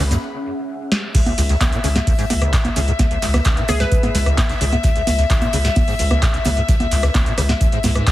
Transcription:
Already playing: C#4 G#4 E5 F#5 B5
0.00 C#2
0.11 F#2, snare, closed hi-hat, high conga, shaker
0.92 snare
1.15 C#2 E5, kick, snare, closed hi-hat, crash, shaker
1.26 C#2, closed hi-hat, high conga, shaker
1.38 C#2, closed hi-hat, open hi-hat, shaker
1.49 C#2, snare, closed hi-hat, shaker
1.61 C#2, kick, snare, clap, closed hi-hat, high conga, shaker
1.72 B2, closed hi-hat, shaker
1.84 C#2 C#3, closed hi-hat, open hi-hat, shaker
1.95 G#2, snare, closed hi-hat, high conga, shaker
2.07 C#2, kick, closed hi-hat, open hi-hat, shaker
2.18 G#2, snare, closed hi-hat, shaker
2.30 C#2, closed hi-hat, open hi-hat, high conga, shaker
2.42 C#2, cross-stick, closed hi-hat, shaker
2.53 C#3, kick, snare, clap, closed hi-hat, shaker
2.65 B1, closed hi-hat, high conga, shaker
2.76 C#2 C#3, closed hi-hat, open hi-hat, shaker
2.88 G#2, closed hi-hat, shaker
2.99 C#2, kick, snare, closed hi-hat, high conga, shaker
3.11 C#2, closed hi-hat, shaker
3.22 C#2, clap, closed hi-hat, open hi-hat, shaker
3.34 C#2, cross-stick, snare, closed hi-hat, high conga, shaker
3.45 C#2, kick, snare, clap, closed hi-hat, shaker
3.57 B2, closed hi-hat, shaker
3.68 C#2 C#3 G#4, cross-stick, closed hi-hat, open hi-hat, high conga, shaker
3.80 G#2 B4, snare, closed hi-hat, shaker
3.92 C#2, kick, closed hi-hat, shaker
4.03 G#2, closed hi-hat, high conga, shaker
4.15 C#2, snare, closed hi-hat, open hi-hat, shaker
4.26 C#2, cross-stick, closed hi-hat, shaker
4.38 C#3, kick, snare, clap, closed hi-hat, high conga, shaker
4.49 B1, snare, closed hi-hat, shaker
4.61 C#2 C#3, closed hi-hat, open hi-hat, shaker
4.72 G#2, closed hi-hat, high conga, shaker
4.83 C#2, kick, snare, closed hi-hat, shaker
4.95 C#2, closed hi-hat, shaker
5.07 C#2, closed hi-hat, open hi-hat, high conga, shaker
5.19 C#2, snare, closed hi-hat, shaker
5.30 C#2, kick, snare, clap, closed hi-hat, shaker
5.41 B2, closed hi-hat, high conga, shaker
5.53 C#2 C#3, closed hi-hat, open hi-hat, shaker
5.65 G#2, snare, closed hi-hat, shaker
5.75 C#2, kick, closed hi-hat, open hi-hat, high conga, shaker
5.88 G#2, snare, closed hi-hat, shaker
5.99 C#2, closed hi-hat, open hi-hat, shaker
6.11 C#2, cross-stick, closed hi-hat, high conga, shaker
6.22 C#3, kick, snare, clap, closed hi-hat, shaker
6.34 B1, closed hi-hat, shaker
6.45 C#2 C#3, closed hi-hat, open hi-hat, high conga, shaker
6.57 G#2, closed hi-hat, shaker
6.68 C#2, kick, snare, closed hi-hat, shaker
6.80 C#2, closed hi-hat, high conga, shaker
6.91 C#2, clap, closed hi-hat, open hi-hat, shaker
7.03 C#2, cross-stick, snare, closed hi-hat, shaker
7.14 C#2, kick, snare, clap, closed hi-hat, high conga, shaker
7.26 B2, closed hi-hat, shaker
7.38 C#2 C#3, cross-stick, closed hi-hat, open hi-hat, shaker
7.49 G#2, snare, closed hi-hat, high conga, shaker
7.61 C#2, kick, closed hi-hat, shaker
7.72 G#2, closed hi-hat, shaker
7.83 C#2 G#2, snare, closed hi-hat, open hi-hat, high conga, shaker
7.95 G#2, cross-stick, closed hi-hat, shaker
8.07 G#2, kick, snare, clap, closed hi-hat, shaker

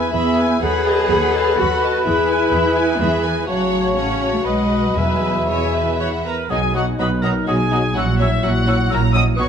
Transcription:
Already playing: E3 B3 G#4 B4 E5 G#5 B5
0.12 E2 E3 B3 G#4 E5 B5
0.16 E5
0.37 B4 G#5
0.61 D#2 F#3 G#4 A4 B4 F#5 B5
0.87 B4 D#5 A5
1.10 D#2 A4 F#5 B5
1.34 B4 D#5 A5
1.57 D#2 F#4 A4 F#5 B5
1.81 B4 D#5 A5
2.04 E2 E3 E4 G#4 E5 B5
2.28 B4 G#5
2.52 E2 G#4 E5 B5
2.76 B4 G#5
2.99 E2 E3 G#4 E5 B5
3.23 B4 G#5
3.47 A1 C#3 F#3 F#4 C#5 F#5 A5
3.95 C#4 C#5 F#5
4.33 A3
4.44 B1 B2 G#3 B4 D#5 F#5 B5
4.84 F#3
4.96 E2 F#3 G#4 B4 E5 G#5
5.48 E3 C#5 E5 G#5
5.75 B4
5.99 F#4 C#5 F#5
6.25 A#4 B4 A#5
6.49 B1 B2 F#3 B3 D#4 F#4 G#4 D#5 G#5 D#6
6.73 F#3 B3 D#4 F#4 D#5 F#5 D#6
6.98 B1 B2 F#3 B3 D#4 F#4 B4 D#5 B5 D#6
7.22 F#3 B3 D#4 F#4 A#4 D#5 A#5 D#6
7.47 B1 B2 F#3 B3 D#4 F#4 G#4 D#5 G#5 D#6
7.71 F#3 B3 D#4 F#4 D#5 D#6
7.95 A#1 A#2 F#3 C#4 E4 F#4 C#5 F#5 E6
8.19 F#3 C#4 E4 F#4 C#5 E5 E6
8.42 A#1 A#2 F#3 C#4 E4 F#4 C#5 F#5 E6
8.66 F#3 C#4 E4 F#4 C#5 E6
8.90 A#1 A#2 F#3 C#4 E4 F#4 A#4 C#5 A#5 E6
9.12 F#3 C#4 E4 F#4 C#5 D#5 D#6 E6
9.36 B1 B2 F#3 B3 D#4 F#4 B4 C#5 C#6 D#6

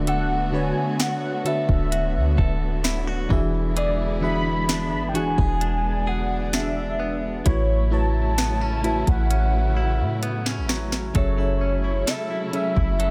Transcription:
Already playing: D1 D3 A3 B3 D4 F#4 B4 E5
0.07 D3 A4 F#5, closed hi-hat
0.52 D3 B3 D4 F#4 B4 C#5 G#5
1.00 F#4 F#5, snare, closed hi-hat
1.44 D3 D4 F#4 A4 B4 E5, closed hi-hat
1.69 D1, kick
1.92 F#4, closed hi-hat
2.16 D2
2.38 D1 A4, kick
2.84 E4, snare, closed hi-hat
3.07 F#4
3.29 E1 E3 G#3 B3 D4 E4 F#4 G#4 E5, kick
3.77 E3 G#4 D5, closed hi-hat
4.21 E3 B3 D4 F#4 G#4 E5 B5
4.69 D4, snare, closed hi-hat
4.93 G#1
5.09 G5
5.13 E1 E3 D4 F#4 G#4 F#5 G#5, closed hi-hat
5.38 E1 G#4, kick
5.61 D4, closed hi-hat
6.07 G#4 F#5
6.53 D4 E5, snare, closed hi-hat
7.00 B3
7.44 A1 A2 C#3 F#3 A3 E4 F#4 B4 C#5, kick, closed hi-hat
7.90 F#3 A3 E4 F#4 B4 C#5 A5
8.38 B3, snare, closed hi-hat
8.61 C#4
8.83 A3 E4 F#4 B4 E5, closed hi-hat
9.07 A1 F#5, kick, closed hi-hat
9.30 C#4, closed hi-hat
9.77 E4
10.00 A2
10.23 B3, closed hi-hat
10.46 C#4, snare
10.58 A1
10.69 F#3, snare
10.92 snare
11.13 F#1 C#3 F#3 A3 C#4 E4 G#4 A4 C#5 E5, kick, closed hi-hat
11.36 F#3 C#4 E4 G#4 A4 E5
11.61 C#4
11.84 E4
12.07 A4 E5, snare, closed hi-hat
12.30 E4
12.52 F#3 C#4 G#4 A4 E5, closed hi-hat
12.76 F#1 E4, kick
12.99 F#3 A4, closed hi-hat

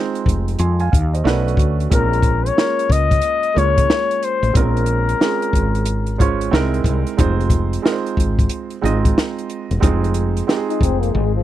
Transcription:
Already playing: G#3 C4 D#4 F4 C5
0.15 closed hi-hat
0.26 F1, kick, closed hi-hat
0.48 closed hi-hat
0.59 F2 G#5 C6, closed hi-hat
0.80 F5 G#5, closed hi-hat
0.92 D#2 F5, kick, closed hi-hat
1.14 C5 D#5, closed hi-hat
1.24 B1 A3 C#4 D4 F#4 B4, snare
1.48 closed hi-hat
1.57 D2, kick, closed hi-hat
1.80 closed hi-hat
1.90 A#1 G#3 C4 C#4 F4 A#4, kick, closed hi-hat
2.13 closed hi-hat
2.22 kick, closed hi-hat
2.46 C#5, closed hi-hat
2.56 G#3 A#3 C#4 F4 A#4, snare
2.79 closed hi-hat
2.90 C#2 D#5, kick, closed hi-hat
3.11 kick, closed hi-hat
3.22 closed hi-hat
3.43 closed hi-hat
3.54 C#2 G#3 A#3 C#4 F4 C#5, closed hi-hat
3.58 C#5
3.78 kick, closed hi-hat
3.90 snare
4.11 closed hi-hat
4.23 C5, closed hi-hat
4.43 A1, closed hi-hat
4.53 A#1 G#3 C4 C#4 F4 A#4, kick, closed hi-hat
4.58 A#4
4.77 closed hi-hat
4.86 closed hi-hat
5.09 closed hi-hat
5.20 G#3 C4 C#4 F4 G#4, snare
5.42 closed hi-hat
5.53 G#1, kick, closed hi-hat
5.75 closed hi-hat
5.86 closed hi-hat
6.07 closed hi-hat
6.18 G#3 C#4 F4 C5 C#5, kick, closed hi-hat
6.41 closed hi-hat
6.51 C2 G#3 C4 D#4 E4 A#4, snare
6.74 closed hi-hat
6.84 C2, kick, closed hi-hat
7.07 closed hi-hat
7.17 F1 G#3 C4 D#4 F4 C5, kick, closed hi-hat
7.41 closed hi-hat
7.50 kick, closed hi-hat
7.73 closed hi-hat
7.82 G#3 C4 D#4 F4 A#4, snare
7.92 C5
8.06 closed hi-hat
8.17 G#1, kick, closed hi-hat
8.39 kick, closed hi-hat
8.49 closed hi-hat
8.70 closed hi-hat
8.81 G#1 G#3 C4 D#4 F4 D#5, closed hi-hat
9.05 kick, closed hi-hat
9.18 snare
9.39 closed hi-hat
9.50 closed hi-hat
9.71 E1, closed hi-hat
9.80 F1 G#3 C4 D#4 F4 G#4, kick, closed hi-hat
10.04 closed hi-hat
10.14 closed hi-hat
10.37 closed hi-hat
10.47 G#3 C4 D#4 F4 G4, snare
10.57 G#4
10.69 D#4, closed hi-hat
10.81 F1 C4, kick, closed hi-hat
11.02 A#3, closed hi-hat
11.14 G#1 G#3
11.35 F3

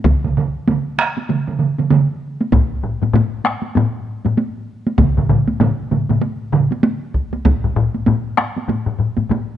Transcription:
0.04 taiko, taiko mid, taiko high
0.25 taiko mid
0.37 taiko mid
0.68 taiko mid, taiko high
0.98 taiko rim, taiko high
1.17 taiko high
1.29 taiko mid, taiko high
1.47 taiko mid
1.60 taiko mid
1.78 taiko mid, taiko high
1.90 taiko mid, taiko high
2.41 taiko high
2.52 taiko, taiko low-mid, taiko high
2.83 taiko low-mid
3.02 taiko low-mid, taiko high
3.13 taiko low-mid, taiko high
3.44 taiko rim, taiko high
3.62 taiko high
3.75 taiko low-mid, taiko high
4.25 taiko low-mid, taiko high
4.37 taiko high
4.87 taiko high
4.98 taiko, taiko low-mid, taiko mid, taiko high
5.17 taiko low-mid, taiko mid
5.30 taiko low-mid, taiko mid
5.48 taiko high
5.60 taiko low-mid, taiko mid, taiko high
5.91 taiko low-mid, taiko mid, taiko high
6.09 taiko low-mid, taiko mid, taiko high
6.21 taiko high
6.52 taiko low-mid, taiko mid
6.71 taiko high
6.83 taiko high
7.14 taiko
7.33 taiko high
7.45 taiko, taiko low-mid, taiko high
7.64 taiko low-mid
7.76 taiko low-mid
7.94 taiko high
8.07 taiko low-mid, taiko high
8.37 taiko rim, taiko high
8.56 taiko high
8.68 taiko low-mid, taiko high
8.86 taiko low-mid
8.99 taiko low-mid
9.17 taiko low-mid, taiko high
9.29 taiko low-mid, taiko high

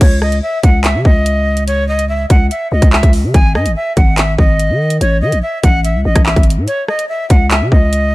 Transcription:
0.01 C#2 C#5, kick, closed hi-hat, crash
0.22 D#5, cross-stick
0.32 closed hi-hat
0.42 E5
0.63 C#2 F#5, kick, closed hi-hat
0.84 E5, clap, closed hi-hat
0.95 C#3
1.05 C#2 D#5, kick
1.26 closed hi-hat
1.57 closed hi-hat
1.67 C#5, closed hi-hat
1.88 D#5
1.99 closed hi-hat
2.09 E5
2.30 C#2 F#5, kick, closed hi-hat
2.51 E5, closed hi-hat
2.72 C#2 D#5
2.82 C#2, kick, closed hi-hat
2.93 E5, clap
3.03 C#2, kick, closed hi-hat
3.13 open hi-hat
3.24 C#3
3.34 G#1 G#5, kick, closed hi-hat
3.55 G#2 D#5, cross-stick
3.66 G#1, closed hi-hat
3.76 E5
3.97 G#1 F#5, kick, closed hi-hat
4.18 E5, clap, closed hi-hat
4.38 G#1 D#5, kick
4.59 closed hi-hat
4.70 D#3
4.90 closed hi-hat
5.01 A1 C#5, closed hi-hat
5.22 E3 D#5
5.32 A1, closed hi-hat
5.43 E5
5.63 A1 F#5, kick, closed hi-hat
5.84 E5, closed hi-hat
5.95 C#2
6.05 A1 D#5
6.16 A1, kick, cross-stick, closed hi-hat
6.26 E5, clap
6.36 G#1, kick, closed hi-hat
6.43 closed hi-hat
6.50 closed hi-hat
6.57 A2
6.67 C#5, closed hi-hat
6.88 D#5, cross-stick
6.99 closed hi-hat
7.09 E5
7.30 C#2 F#5, kick, closed hi-hat
7.51 E5, clap, closed hi-hat
7.61 C#3
7.72 C#2 D#5, kick
7.93 closed hi-hat

